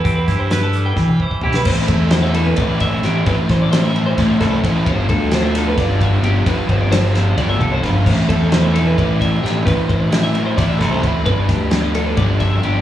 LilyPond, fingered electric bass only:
\new Staff \with { instrumentName = "Fingered electric bass" } { \clef bass \time 7/8 \key a \minor \tempo 4 = 131 e,8 g,4. e8 r8 b,,8 | a,,8 e,4. a,,4 a,,8 | a,,16 r16 a,,4. a,,8 c,8 a,,8 | g,,8 d,4. g,,4 g,,8 |
g,,16 r16 g,,4. g,,8 c,8 g,,8 | a,,8 e,4. a,,4 a,,8 | a,,16 r16 a,,4. a,,8 c,8 d,8 | g,,8 d,4. g,,4 g,,8 | }